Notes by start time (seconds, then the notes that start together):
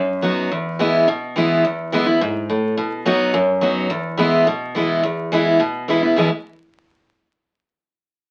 Already playing: F#2
0.22 F#3 B3 D#4 F#4
0.51 E2
0.79 E3 G#3 B3 E4
1.08 B2
1.36 E3 G#3 B3 E4
1.65 E2
1.92 E3 G#3 B3 E4
2.06 B3 E4
2.21 G#2
2.50 A2
2.77 B2
3.05 F#3 B3 D#4 F#4
3.34 F#2
3.61 F#3 B3 D#4 F#4
3.90 E2
4.17 E3 G#3 B3 E4
4.47 B2
4.75 E3 G#3 B3 E4
5.03 E2
5.32 E3 G#3 B3 E4
5.60 B2
5.88 E3 G#3 B3 E4
6.03 B3 E4
6.16 E2 B2 E3 G#3 B3 E4